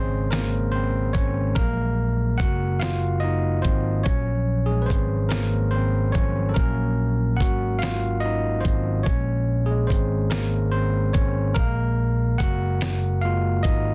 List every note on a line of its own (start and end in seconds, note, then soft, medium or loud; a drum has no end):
0.00 1.11 G#1 medium
0.00 1.57 C#3 medium
0.00 1.58 G#3 medium
0.00 0.30 C4 medium
0.00 1.17 C#4 medium
0.00 1.58 G#4 medium
0.00 0.72 C5 medium
0.00 1.13 C#5 medium
0.31 0.71 A#3 medium
0.31 0.74 A#4 medium
0.31 snare loud
0.31 closed hi-hat medium
0.72 1.13 C4 medium
0.72 1.15 C5 medium
1.13 1.53 G#1 medium
1.13 1.54 C#4 medium
1.13 1.57 C#5 medium
1.13 kick medium
1.13 closed hi-hat medium
1.55 2.36 A#1 loud
1.55 2.78 F#3 medium
1.55 2.78 G#3 soft
1.55 2.37 A#3 medium
1.55 2.42 A#4 medium
1.55 kick loud
1.55 closed hi-hat medium
2.38 3.61 F#1 medium
2.38 2.79 F#4 medium
2.38 2.82 F#5 loud
2.38 kick medium
2.38 closed hi-hat medium
2.79 3.23 F5 loud
2.79 snare loud
2.79 closed hi-hat medium
2.84 3.21 F4 medium
3.20 3.64 D#5 medium
3.24 3.62 D#4 medium
3.62 4.03 G#1 medium
3.62 4.06 C5 loud
3.62 kick medium
3.62 closed hi-hat medium
3.67 4.04 C4 medium
4.03 4.86 A#1 loud
4.03 5.28 F3 medium
4.03 5.28 F#3 medium
4.03 4.69 C#5 loud
4.03 kick loud
4.03 closed hi-hat medium
4.08 4.66 C#4 medium
4.66 4.82 G#4 medium
4.71 4.83 G#3 medium
4.82 4.89 B4 medium
4.86 5.06 C5 medium
4.90 6.11 G#1 medium
4.90 5.09 C4 medium
4.90 kick medium
4.90 closed hi-hat medium
5.29 5.73 A#4 medium
5.29 snare loud
5.29 closed hi-hat medium
5.34 5.71 A#3 medium
5.71 6.15 C5 medium
5.76 6.13 C4 medium
6.12 6.53 G#1 medium
6.12 6.28 C#5 medium
6.12 kick medium
6.12 closed hi-hat medium
6.16 6.53 F3 soft
6.16 6.53 F#3 soft
6.16 6.32 C#4 medium
6.49 6.56 A4 medium
6.54 7.41 A#1 loud
6.54 7.12 F#3 medium
6.54 7.37 A#3 medium
6.54 7.41 A#4 medium
6.54 kick loud
6.54 closed hi-hat medium
7.37 7.81 F#5 medium
7.37 kick medium
7.41 8.62 G#1 loud
7.41 7.79 F#4 medium
7.41 closed hi-hat medium
7.79 8.23 F5 loud
7.79 closed hi-hat medium
7.83 8.22 F4 medium
7.83 snare loud
8.20 8.65 D#5 loud
8.26 8.63 D#4 medium
8.61 9.06 C5 medium
8.65 9.03 G#1 medium
8.65 9.04 C4 medium
8.65 kick medium
8.65 closed hi-hat medium
9.03 9.86 A#1 loud
9.03 9.70 G#3 medium
9.03 9.69 C#5 loud
9.03 kick loud
9.03 closed hi-hat medium
9.08 10.28 A#3 soft
9.08 9.66 C#4 medium
9.66 9.76 G#4 medium
9.71 9.80 G#3 medium
9.87 10.06 C5 medium
9.87 kick medium
9.91 11.11 G#1 medium
9.91 10.11 C4 medium
9.91 closed hi-hat medium
10.30 10.73 A#4 medium
10.30 snare loud
10.30 closed hi-hat medium
10.34 10.72 A#3 medium
10.71 11.15 C5 medium
10.76 11.14 C4 medium
11.13 11.53 G#1 medium
11.13 11.57 C#5 medium
11.13 kick medium
11.13 closed hi-hat medium
11.18 11.55 C#4 medium
11.55 12.36 A#1 loud
11.55 12.41 A#4 medium
11.55 kick loud
11.55 closed hi-hat medium
11.59 12.78 G#3 medium
11.59 12.37 A#3 medium
11.59 12.79 F5 medium
12.38 13.65 F#1 medium
12.38 13.25 F#5 loud
12.38 kick medium
12.38 closed hi-hat medium
12.43 13.21 F#4 medium
12.81 snare loud
12.81 closed hi-hat medium
13.21 13.61 G#3 medium
13.21 13.62 A#3 soft
13.21 13.63 F4 medium
13.21 13.65 F5 loud
13.63 13.94 G#1 medium
13.63 13.94 D#5 loud
13.63 kick medium
13.63 closed hi-hat medium
13.67 13.94 D#4 medium